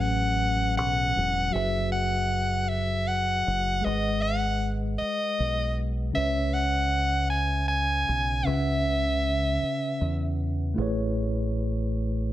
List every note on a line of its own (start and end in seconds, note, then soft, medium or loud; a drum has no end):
0.00 0.78 A1 loud
0.00 1.48 A2 medium
0.00 1.48 E3 medium
0.00 1.49 F#3 medium
0.00 1.50 C#4 medium
0.00 1.51 G#4 medium
0.00 1.51 B4 medium
0.00 0.77 F#5 medium
0.77 1.12 B1 medium
0.77 1.55 F#5 loud
1.17 1.50 E1 medium
1.50 3.78 F#3 medium
1.50 3.79 F#4 medium
1.50 3.80 G#4 medium
1.50 1.92 E5 medium
1.55 3.42 F#1 medium
1.55 3.81 B4 medium
1.55 3.82 E5 medium
1.92 2.70 F#5 medium
2.69 3.09 E5 medium
3.08 3.86 F#5 medium
3.47 3.81 F#1 medium
3.81 6.09 G#3 medium
3.81 6.10 G#4 medium
3.81 6.11 B4 medium
3.81 4.24 D#5 medium
3.86 4.96 G#1 medium
3.86 6.12 D#5 medium
3.86 6.13 F#5 medium
4.22 4.72 F#5 medium
4.99 5.81 D#5 medium
4.99 muted fingered electric bass stroke soft
5.40 6.11 B1 medium
6.12 8.40 C#3 medium
6.12 8.41 C#4 medium
6.12 8.42 B4 medium
6.12 6.55 E5 loud
6.16 8.04 C#2 medium
6.16 8.43 C#5 medium
6.16 8.44 E5 medium
6.54 7.29 F#5 medium
7.30 7.66 G#5 medium
7.68 8.47 G#5 loud
8.09 8.42 B1 medium
8.43 10.71 C#3 medium
8.43 10.72 C#4 medium
8.43 10.72 B4 medium
8.43 10.38 E5 medium
8.47 9.57 C#2 medium
8.47 10.73 E5 medium
8.47 10.74 F#5 medium
9.63 muted fingered electric bass stroke soft
10.01 10.73 E2 medium
10.74 12.33 A1 medium
10.74 12.33 A3 medium
10.74 12.33 E4 medium
10.74 12.33 G#4 medium
10.79 12.33 B4 medium
10.79 12.33 C#5 medium